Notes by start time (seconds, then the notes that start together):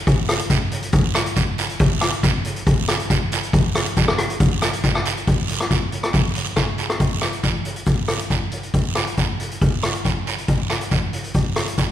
0.07 kick, closed hi-hat, long guiro
0.29 cross-stick, closed hi-hat
0.40 closed hi-hat
0.50 kick, closed hi-hat, short guiro
0.71 closed hi-hat
0.82 closed hi-hat
0.92 kick, closed hi-hat, long guiro
1.15 cross-stick, closed hi-hat, short guiro
1.26 closed hi-hat
1.36 kick, closed hi-hat, short guiro
1.58 closed hi-hat, short guiro
1.69 closed hi-hat
1.80 kick, closed hi-hat, long guiro
2.01 cross-stick, closed hi-hat
2.12 closed hi-hat
2.23 kick, closed hi-hat, short guiro
2.45 closed hi-hat
2.56 closed hi-hat
2.67 kick, closed hi-hat, long guiro
2.88 cross-stick, closed hi-hat, short guiro
3.00 closed hi-hat
3.10 kick, closed hi-hat, short guiro
3.32 closed hi-hat, short guiro
3.43 closed hi-hat
3.53 kick, closed hi-hat, long guiro
3.75 cross-stick, closed hi-hat
3.86 closed hi-hat
3.97 kick, closed hi-hat, short guiro
4.08 cross-stick
4.18 cross-stick, closed hi-hat
4.30 closed hi-hat
4.40 kick, closed hi-hat, long guiro
4.62 cross-stick, closed hi-hat, short guiro
4.73 closed hi-hat
4.83 kick, closed hi-hat, short guiro
4.95 cross-stick
5.05 closed hi-hat, short guiro
5.17 closed hi-hat
5.27 kick, closed hi-hat, long guiro
5.49 closed hi-hat
5.60 cross-stick, closed hi-hat
5.71 kick, closed hi-hat, short guiro
5.92 closed hi-hat
6.03 cross-stick, closed hi-hat
6.13 kick, closed hi-hat, short guiro, long guiro
6.35 closed hi-hat
6.46 closed hi-hat
6.56 kick, cross-stick, closed hi-hat, short guiro
6.78 closed hi-hat, short guiro
6.90 cross-stick, closed hi-hat
7.00 kick, closed hi-hat, long guiro
7.21 cross-stick, closed hi-hat, short guiro
7.33 closed hi-hat
7.43 kick, closed hi-hat, short guiro
7.65 closed hi-hat
7.76 closed hi-hat
7.86 kick, closed hi-hat, long guiro
8.08 cross-stick, closed hi-hat
8.19 closed hi-hat
8.30 kick, closed hi-hat, short guiro
8.51 closed hi-hat
8.63 closed hi-hat
8.74 kick, closed hi-hat, long guiro
8.95 cross-stick, closed hi-hat, short guiro
9.07 closed hi-hat
9.17 kick, closed hi-hat, short guiro
9.40 closed hi-hat
9.51 closed hi-hat
9.62 kick, closed hi-hat, long guiro
9.83 cross-stick, closed hi-hat
9.95 closed hi-hat
10.05 kick, closed hi-hat, short guiro
10.27 closed hi-hat, short guiro
10.38 closed hi-hat
10.48 kick, closed hi-hat, long guiro
10.70 cross-stick, closed hi-hat, short guiro
10.81 closed hi-hat
10.91 kick, closed hi-hat, short guiro
11.13 closed hi-hat
11.24 closed hi-hat
11.34 kick, closed hi-hat, long guiro
11.56 cross-stick, closed hi-hat
11.67 closed hi-hat
11.78 kick, closed hi-hat, short guiro